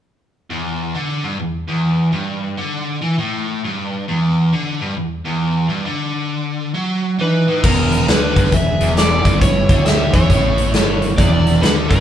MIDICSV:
0, 0, Header, 1, 6, 480
1, 0, Start_track
1, 0, Tempo, 444774
1, 547, Time_signature, 4, 2, 24, 8
1, 12953, End_track
2, 0, Start_track
2, 0, Title_t, "Electric slide guitar"
2, 0, Program_c, 0, 29
2, 7783, Note_on_c, 0, 71, 72
2, 8218, Note_off_c, 0, 71, 0
2, 8253, Note_on_c, 0, 70, 87
2, 8692, Note_off_c, 0, 70, 0
2, 8732, Note_on_c, 0, 71, 90
2, 9218, Note_off_c, 0, 71, 0
2, 9219, Note_on_c, 0, 76, 94
2, 9696, Note_on_c, 0, 74, 87
2, 9700, Note_off_c, 0, 76, 0
2, 10161, Note_off_c, 0, 74, 0
2, 10166, Note_on_c, 0, 73, 90
2, 10633, Note_on_c, 0, 76, 88
2, 10651, Note_off_c, 0, 73, 0
2, 10936, Note_on_c, 0, 73, 94
2, 10943, Note_off_c, 0, 76, 0
2, 12062, Note_on_c, 0, 74, 87
2, 12099, Note_off_c, 0, 73, 0
2, 12544, Note_on_c, 0, 71, 85
2, 12555, Note_off_c, 0, 74, 0
2, 12625, Note_off_c, 0, 71, 0
2, 12838, Note_on_c, 0, 71, 72
2, 12953, Note_off_c, 0, 71, 0
2, 12953, End_track
3, 0, Start_track
3, 0, Title_t, "Lead electric guitar"
3, 0, Program_c, 1, 29
3, 7786, Note_on_c, 1, 63, 54
3, 8220, Note_off_c, 1, 63, 0
3, 8259, Note_on_c, 1, 59, 80
3, 8695, Note_off_c, 1, 59, 0
3, 8753, Note_on_c, 1, 62, 66
3, 9182, Note_off_c, 1, 62, 0
3, 9213, Note_on_c, 1, 68, 85
3, 9650, Note_off_c, 1, 68, 0
3, 9678, Note_on_c, 1, 64, 69
3, 10121, Note_off_c, 1, 64, 0
3, 10166, Note_on_c, 1, 64, 80
3, 10604, Note_off_c, 1, 64, 0
3, 10634, Note_on_c, 1, 67, 71
3, 10914, Note_off_c, 1, 67, 0
3, 10933, Note_on_c, 1, 64, 76
3, 12020, Note_off_c, 1, 64, 0
3, 12071, Note_on_c, 1, 64, 72
3, 12512, Note_off_c, 1, 64, 0
3, 12554, Note_on_c, 1, 62, 68
3, 12634, Note_off_c, 1, 62, 0
3, 12838, Note_on_c, 1, 62, 58
3, 12953, Note_off_c, 1, 62, 0
3, 12953, End_track
4, 0, Start_track
4, 0, Title_t, "Overdriven electric guitar"
4, 0, Program_c, 2, 29
4, 544, Note_on_c, 2, 40, 81
4, 1022, Note_on_c, 2, 50, 85
4, 1023, Note_off_c, 2, 40, 0
4, 1322, Note_off_c, 2, 50, 0
4, 1331, Note_on_c, 2, 43, 84
4, 1505, Note_off_c, 2, 43, 0
4, 1511, Note_on_c, 2, 40, 59
4, 1756, Note_off_c, 2, 40, 0
4, 1817, Note_on_c, 2, 40, 90
4, 2290, Note_off_c, 2, 40, 0
4, 2298, Note_on_c, 2, 43, 83
4, 2771, Note_off_c, 2, 43, 0
4, 2781, Note_on_c, 2, 50, 76
4, 3254, Note_off_c, 2, 50, 0
4, 3258, Note_on_c, 2, 52, 87
4, 3432, Note_off_c, 2, 52, 0
4, 3437, Note_on_c, 2, 45, 79
4, 3914, Note_off_c, 2, 45, 0
4, 3926, Note_on_c, 2, 43, 75
4, 4399, Note_off_c, 2, 43, 0
4, 4405, Note_on_c, 2, 40, 87
4, 4879, Note_off_c, 2, 40, 0
4, 4884, Note_on_c, 2, 50, 80
4, 5178, Note_off_c, 2, 50, 0
4, 5193, Note_on_c, 2, 43, 85
4, 5361, Note_off_c, 2, 43, 0
4, 5366, Note_on_c, 2, 40, 55
4, 5608, Note_off_c, 2, 40, 0
4, 5671, Note_on_c, 2, 40, 88
4, 6140, Note_off_c, 2, 40, 0
4, 6146, Note_on_c, 2, 43, 89
4, 6317, Note_off_c, 2, 43, 0
4, 6320, Note_on_c, 2, 50, 90
4, 7276, Note_off_c, 2, 50, 0
4, 7280, Note_on_c, 2, 54, 80
4, 7755, Note_off_c, 2, 54, 0
4, 7769, Note_on_c, 2, 52, 83
4, 8060, Note_off_c, 2, 52, 0
4, 8075, Note_on_c, 2, 45, 82
4, 8241, Note_off_c, 2, 45, 0
4, 8250, Note_on_c, 2, 40, 95
4, 8719, Note_off_c, 2, 40, 0
4, 8730, Note_on_c, 2, 50, 85
4, 9018, Note_off_c, 2, 50, 0
4, 9025, Note_on_c, 2, 43, 94
4, 9193, Note_off_c, 2, 43, 0
4, 9198, Note_on_c, 2, 40, 55
4, 9440, Note_off_c, 2, 40, 0
4, 9505, Note_on_c, 2, 40, 90
4, 9971, Note_off_c, 2, 40, 0
4, 9986, Note_on_c, 2, 43, 96
4, 10451, Note_off_c, 2, 43, 0
4, 10464, Note_on_c, 2, 50, 84
4, 10929, Note_off_c, 2, 50, 0
4, 10941, Note_on_c, 2, 52, 94
4, 11107, Note_off_c, 2, 52, 0
4, 11112, Note_on_c, 2, 45, 81
4, 11582, Note_off_c, 2, 45, 0
4, 11592, Note_on_c, 2, 43, 82
4, 12056, Note_off_c, 2, 43, 0
4, 12060, Note_on_c, 2, 40, 93
4, 12534, Note_off_c, 2, 40, 0
4, 12534, Note_on_c, 2, 50, 87
4, 12831, Note_off_c, 2, 50, 0
4, 12840, Note_on_c, 2, 43, 94
4, 12953, Note_off_c, 2, 43, 0
4, 12953, End_track
5, 0, Start_track
5, 0, Title_t, "Fingered electric bass"
5, 0, Program_c, 3, 33
5, 8242, Note_on_c, 3, 28, 82
5, 8687, Note_off_c, 3, 28, 0
5, 8720, Note_on_c, 3, 38, 85
5, 9001, Note_off_c, 3, 38, 0
5, 9025, Note_on_c, 3, 31, 85
5, 9187, Note_off_c, 3, 31, 0
5, 9204, Note_on_c, 3, 28, 71
5, 9483, Note_off_c, 3, 28, 0
5, 9494, Note_on_c, 3, 28, 86
5, 9941, Note_off_c, 3, 28, 0
5, 9982, Note_on_c, 3, 31, 84
5, 10425, Note_off_c, 3, 31, 0
5, 10458, Note_on_c, 3, 38, 92
5, 10901, Note_off_c, 3, 38, 0
5, 10942, Note_on_c, 3, 40, 79
5, 11101, Note_off_c, 3, 40, 0
5, 11116, Note_on_c, 3, 33, 87
5, 11557, Note_off_c, 3, 33, 0
5, 11584, Note_on_c, 3, 31, 75
5, 12029, Note_off_c, 3, 31, 0
5, 12070, Note_on_c, 3, 28, 90
5, 12511, Note_off_c, 3, 28, 0
5, 12539, Note_on_c, 3, 38, 89
5, 12821, Note_off_c, 3, 38, 0
5, 12849, Note_on_c, 3, 31, 86
5, 12953, Note_off_c, 3, 31, 0
5, 12953, End_track
6, 0, Start_track
6, 0, Title_t, "Drums"
6, 8240, Note_on_c, 9, 49, 91
6, 8242, Note_on_c, 9, 36, 105
6, 8348, Note_off_c, 9, 49, 0
6, 8350, Note_off_c, 9, 36, 0
6, 8545, Note_on_c, 9, 42, 59
6, 8653, Note_off_c, 9, 42, 0
6, 8720, Note_on_c, 9, 42, 79
6, 8730, Note_on_c, 9, 38, 101
6, 8828, Note_off_c, 9, 42, 0
6, 8838, Note_off_c, 9, 38, 0
6, 9027, Note_on_c, 9, 36, 92
6, 9029, Note_on_c, 9, 42, 56
6, 9122, Note_on_c, 9, 38, 28
6, 9134, Note_off_c, 9, 36, 0
6, 9137, Note_off_c, 9, 42, 0
6, 9195, Note_on_c, 9, 42, 83
6, 9200, Note_on_c, 9, 36, 76
6, 9230, Note_off_c, 9, 38, 0
6, 9303, Note_off_c, 9, 42, 0
6, 9308, Note_off_c, 9, 36, 0
6, 9502, Note_on_c, 9, 42, 61
6, 9610, Note_off_c, 9, 42, 0
6, 9679, Note_on_c, 9, 42, 84
6, 9689, Note_on_c, 9, 38, 101
6, 9787, Note_off_c, 9, 42, 0
6, 9797, Note_off_c, 9, 38, 0
6, 9984, Note_on_c, 9, 36, 92
6, 9987, Note_on_c, 9, 42, 62
6, 10092, Note_off_c, 9, 36, 0
6, 10095, Note_off_c, 9, 42, 0
6, 10160, Note_on_c, 9, 36, 101
6, 10163, Note_on_c, 9, 42, 85
6, 10268, Note_off_c, 9, 36, 0
6, 10271, Note_off_c, 9, 42, 0
6, 10457, Note_on_c, 9, 42, 58
6, 10460, Note_on_c, 9, 36, 99
6, 10565, Note_off_c, 9, 42, 0
6, 10568, Note_off_c, 9, 36, 0
6, 10636, Note_on_c, 9, 42, 76
6, 10646, Note_on_c, 9, 38, 94
6, 10744, Note_off_c, 9, 42, 0
6, 10754, Note_off_c, 9, 38, 0
6, 10939, Note_on_c, 9, 36, 98
6, 10939, Note_on_c, 9, 42, 53
6, 11047, Note_off_c, 9, 36, 0
6, 11047, Note_off_c, 9, 42, 0
6, 11114, Note_on_c, 9, 36, 87
6, 11115, Note_on_c, 9, 42, 75
6, 11222, Note_off_c, 9, 36, 0
6, 11223, Note_off_c, 9, 42, 0
6, 11416, Note_on_c, 9, 42, 59
6, 11524, Note_off_c, 9, 42, 0
6, 11587, Note_on_c, 9, 42, 73
6, 11597, Note_on_c, 9, 38, 96
6, 11695, Note_off_c, 9, 42, 0
6, 11705, Note_off_c, 9, 38, 0
6, 11891, Note_on_c, 9, 42, 56
6, 11999, Note_off_c, 9, 42, 0
6, 12068, Note_on_c, 9, 36, 96
6, 12068, Note_on_c, 9, 42, 74
6, 12176, Note_off_c, 9, 36, 0
6, 12176, Note_off_c, 9, 42, 0
6, 12373, Note_on_c, 9, 42, 57
6, 12481, Note_off_c, 9, 42, 0
6, 12550, Note_on_c, 9, 42, 77
6, 12560, Note_on_c, 9, 38, 104
6, 12658, Note_off_c, 9, 42, 0
6, 12668, Note_off_c, 9, 38, 0
6, 12849, Note_on_c, 9, 36, 90
6, 12858, Note_on_c, 9, 42, 52
6, 12953, Note_off_c, 9, 36, 0
6, 12953, Note_off_c, 9, 42, 0
6, 12953, End_track
0, 0, End_of_file